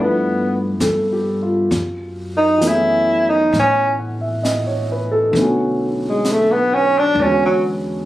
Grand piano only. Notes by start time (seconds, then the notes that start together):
Already playing: F3 A3 B3 D4 E4
0.81 A4
1.13 G4
1.42 F4
2.58 E3 A3
2.63 B3 C#4
2.69 G#4
3.99 F#5
4.21 E5
4.43 D#5
4.67 C#5
4.92 B4
5.11 A4
5.31 D3 A3
5.37 B3 C#4
5.43 F#4
7.14 D3 G#3
7.20 B3 C#4
7.25 F#4